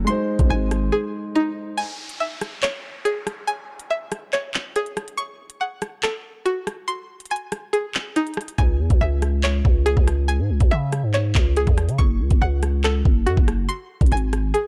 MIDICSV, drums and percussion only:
0, 0, Header, 1, 2, 480
1, 0, Start_track
1, 0, Key_signature, 4, "minor"
1, 0, Tempo, 425532
1, 85, Time_signature, 4, 2, 24, 8
1, 16549, End_track
2, 0, Start_track
2, 0, Title_t, "Drums"
2, 85, Note_on_c, 9, 42, 87
2, 198, Note_off_c, 9, 42, 0
2, 441, Note_on_c, 9, 42, 71
2, 443, Note_on_c, 9, 36, 94
2, 554, Note_off_c, 9, 42, 0
2, 556, Note_off_c, 9, 36, 0
2, 804, Note_on_c, 9, 42, 88
2, 805, Note_on_c, 9, 37, 91
2, 917, Note_off_c, 9, 42, 0
2, 918, Note_off_c, 9, 37, 0
2, 2005, Note_on_c, 9, 42, 84
2, 2118, Note_off_c, 9, 42, 0
2, 2361, Note_on_c, 9, 42, 63
2, 2474, Note_off_c, 9, 42, 0
2, 2723, Note_on_c, 9, 42, 88
2, 2724, Note_on_c, 9, 37, 94
2, 2836, Note_off_c, 9, 42, 0
2, 2837, Note_off_c, 9, 37, 0
2, 2964, Note_on_c, 9, 39, 109
2, 2968, Note_on_c, 9, 42, 83
2, 3077, Note_off_c, 9, 39, 0
2, 3080, Note_off_c, 9, 42, 0
2, 3446, Note_on_c, 9, 42, 82
2, 3559, Note_off_c, 9, 42, 0
2, 3685, Note_on_c, 9, 37, 96
2, 3686, Note_on_c, 9, 42, 88
2, 3798, Note_off_c, 9, 37, 0
2, 3799, Note_off_c, 9, 42, 0
2, 3925, Note_on_c, 9, 42, 87
2, 4038, Note_off_c, 9, 42, 0
2, 4281, Note_on_c, 9, 42, 66
2, 4394, Note_off_c, 9, 42, 0
2, 4643, Note_on_c, 9, 42, 88
2, 4644, Note_on_c, 9, 37, 92
2, 4756, Note_off_c, 9, 42, 0
2, 4757, Note_off_c, 9, 37, 0
2, 4884, Note_on_c, 9, 39, 66
2, 4888, Note_on_c, 9, 42, 80
2, 4997, Note_off_c, 9, 39, 0
2, 5000, Note_off_c, 9, 42, 0
2, 5123, Note_on_c, 9, 39, 123
2, 5236, Note_off_c, 9, 39, 0
2, 5366, Note_on_c, 9, 42, 81
2, 5478, Note_off_c, 9, 42, 0
2, 5485, Note_on_c, 9, 42, 44
2, 5598, Note_off_c, 9, 42, 0
2, 5604, Note_on_c, 9, 37, 98
2, 5604, Note_on_c, 9, 42, 78
2, 5717, Note_off_c, 9, 37, 0
2, 5717, Note_off_c, 9, 42, 0
2, 5728, Note_on_c, 9, 42, 81
2, 5841, Note_off_c, 9, 42, 0
2, 5844, Note_on_c, 9, 42, 86
2, 5957, Note_off_c, 9, 42, 0
2, 6200, Note_on_c, 9, 42, 67
2, 6313, Note_off_c, 9, 42, 0
2, 6563, Note_on_c, 9, 42, 86
2, 6564, Note_on_c, 9, 37, 90
2, 6675, Note_off_c, 9, 42, 0
2, 6677, Note_off_c, 9, 37, 0
2, 6803, Note_on_c, 9, 39, 111
2, 6806, Note_on_c, 9, 42, 78
2, 6916, Note_off_c, 9, 39, 0
2, 6919, Note_off_c, 9, 42, 0
2, 7285, Note_on_c, 9, 42, 82
2, 7398, Note_off_c, 9, 42, 0
2, 7524, Note_on_c, 9, 37, 97
2, 7525, Note_on_c, 9, 42, 93
2, 7636, Note_off_c, 9, 37, 0
2, 7638, Note_off_c, 9, 42, 0
2, 7764, Note_on_c, 9, 42, 82
2, 7877, Note_off_c, 9, 42, 0
2, 8123, Note_on_c, 9, 42, 56
2, 8184, Note_off_c, 9, 42, 0
2, 8184, Note_on_c, 9, 42, 56
2, 8244, Note_off_c, 9, 42, 0
2, 8244, Note_on_c, 9, 42, 57
2, 8303, Note_off_c, 9, 42, 0
2, 8303, Note_on_c, 9, 42, 56
2, 8416, Note_off_c, 9, 42, 0
2, 8482, Note_on_c, 9, 42, 86
2, 8483, Note_on_c, 9, 37, 93
2, 8594, Note_off_c, 9, 42, 0
2, 8596, Note_off_c, 9, 37, 0
2, 8726, Note_on_c, 9, 42, 80
2, 8839, Note_off_c, 9, 42, 0
2, 8963, Note_on_c, 9, 39, 123
2, 9076, Note_off_c, 9, 39, 0
2, 9206, Note_on_c, 9, 42, 81
2, 9319, Note_off_c, 9, 42, 0
2, 9325, Note_on_c, 9, 42, 42
2, 9404, Note_off_c, 9, 42, 0
2, 9404, Note_on_c, 9, 42, 56
2, 9444, Note_on_c, 9, 37, 98
2, 9484, Note_off_c, 9, 42, 0
2, 9484, Note_on_c, 9, 42, 76
2, 9557, Note_off_c, 9, 37, 0
2, 9567, Note_off_c, 9, 42, 0
2, 9567, Note_on_c, 9, 42, 82
2, 9680, Note_off_c, 9, 42, 0
2, 9684, Note_on_c, 9, 36, 119
2, 9684, Note_on_c, 9, 42, 86
2, 9797, Note_off_c, 9, 36, 0
2, 9797, Note_off_c, 9, 42, 0
2, 10041, Note_on_c, 9, 42, 68
2, 10043, Note_on_c, 9, 36, 88
2, 10154, Note_off_c, 9, 42, 0
2, 10155, Note_off_c, 9, 36, 0
2, 10403, Note_on_c, 9, 42, 88
2, 10404, Note_on_c, 9, 37, 94
2, 10515, Note_off_c, 9, 42, 0
2, 10516, Note_off_c, 9, 37, 0
2, 10644, Note_on_c, 9, 39, 110
2, 10647, Note_on_c, 9, 42, 79
2, 10756, Note_off_c, 9, 39, 0
2, 10760, Note_off_c, 9, 42, 0
2, 10884, Note_on_c, 9, 36, 102
2, 10997, Note_off_c, 9, 36, 0
2, 11126, Note_on_c, 9, 42, 83
2, 11239, Note_off_c, 9, 42, 0
2, 11244, Note_on_c, 9, 36, 94
2, 11357, Note_off_c, 9, 36, 0
2, 11364, Note_on_c, 9, 37, 97
2, 11366, Note_on_c, 9, 42, 93
2, 11477, Note_off_c, 9, 37, 0
2, 11479, Note_off_c, 9, 42, 0
2, 11605, Note_on_c, 9, 42, 87
2, 11718, Note_off_c, 9, 42, 0
2, 11961, Note_on_c, 9, 42, 66
2, 11963, Note_on_c, 9, 36, 92
2, 12073, Note_off_c, 9, 42, 0
2, 12076, Note_off_c, 9, 36, 0
2, 12323, Note_on_c, 9, 42, 87
2, 12324, Note_on_c, 9, 37, 93
2, 12436, Note_off_c, 9, 42, 0
2, 12437, Note_off_c, 9, 37, 0
2, 12564, Note_on_c, 9, 39, 65
2, 12567, Note_on_c, 9, 42, 79
2, 12677, Note_off_c, 9, 39, 0
2, 12680, Note_off_c, 9, 42, 0
2, 12803, Note_on_c, 9, 39, 124
2, 12805, Note_on_c, 9, 36, 105
2, 12916, Note_off_c, 9, 39, 0
2, 12917, Note_off_c, 9, 36, 0
2, 13046, Note_on_c, 9, 42, 81
2, 13158, Note_off_c, 9, 42, 0
2, 13164, Note_on_c, 9, 36, 90
2, 13164, Note_on_c, 9, 42, 43
2, 13277, Note_off_c, 9, 36, 0
2, 13277, Note_off_c, 9, 42, 0
2, 13283, Note_on_c, 9, 37, 98
2, 13283, Note_on_c, 9, 42, 78
2, 13396, Note_off_c, 9, 37, 0
2, 13396, Note_off_c, 9, 42, 0
2, 13408, Note_on_c, 9, 42, 85
2, 13521, Note_off_c, 9, 42, 0
2, 13524, Note_on_c, 9, 36, 122
2, 13524, Note_on_c, 9, 42, 84
2, 13637, Note_off_c, 9, 36, 0
2, 13637, Note_off_c, 9, 42, 0
2, 13880, Note_on_c, 9, 42, 65
2, 13883, Note_on_c, 9, 36, 91
2, 13993, Note_off_c, 9, 42, 0
2, 13996, Note_off_c, 9, 36, 0
2, 14242, Note_on_c, 9, 42, 87
2, 14244, Note_on_c, 9, 37, 91
2, 14355, Note_off_c, 9, 42, 0
2, 14356, Note_off_c, 9, 37, 0
2, 14484, Note_on_c, 9, 39, 112
2, 14487, Note_on_c, 9, 42, 81
2, 14597, Note_off_c, 9, 39, 0
2, 14600, Note_off_c, 9, 42, 0
2, 14724, Note_on_c, 9, 36, 101
2, 14837, Note_off_c, 9, 36, 0
2, 14966, Note_on_c, 9, 42, 83
2, 15079, Note_off_c, 9, 42, 0
2, 15084, Note_on_c, 9, 36, 93
2, 15197, Note_off_c, 9, 36, 0
2, 15204, Note_on_c, 9, 37, 96
2, 15206, Note_on_c, 9, 42, 91
2, 15317, Note_off_c, 9, 37, 0
2, 15319, Note_off_c, 9, 42, 0
2, 15445, Note_on_c, 9, 42, 86
2, 15558, Note_off_c, 9, 42, 0
2, 15803, Note_on_c, 9, 36, 92
2, 15805, Note_on_c, 9, 42, 57
2, 15864, Note_off_c, 9, 42, 0
2, 15864, Note_on_c, 9, 42, 54
2, 15916, Note_off_c, 9, 36, 0
2, 15924, Note_off_c, 9, 42, 0
2, 15924, Note_on_c, 9, 42, 57
2, 15984, Note_off_c, 9, 42, 0
2, 15984, Note_on_c, 9, 42, 56
2, 16097, Note_off_c, 9, 42, 0
2, 16163, Note_on_c, 9, 42, 87
2, 16164, Note_on_c, 9, 37, 92
2, 16276, Note_off_c, 9, 42, 0
2, 16277, Note_off_c, 9, 37, 0
2, 16407, Note_on_c, 9, 42, 80
2, 16520, Note_off_c, 9, 42, 0
2, 16549, End_track
0, 0, End_of_file